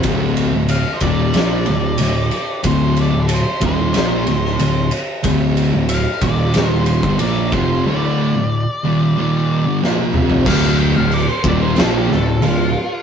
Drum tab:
CC |----------------|----------------|----------------|----------------|
RD |x-x-x-x-x-x-x-x-|x-x-x-x-x-x-x-x-|x-x-x-x-x-x-x-x-|----------------|
SD |--------o-------|--------o--o----|--------o-------|------------o---|
T1 |----------------|----------------|----------------|-------------o--|
T2 |----------------|----------------|----------------|--------------o-|
FT |----------------|----------------|----------------|---------------o|
BD |o-----o---------|o-----o---------|o-----o----o--o-|----------------|

CC |x---x---x---x---|
RD |----------------|
SD |--------o-o-----|
T1 |----------------|
T2 |----------------|
FT |----------------|
BD |o-----o---------|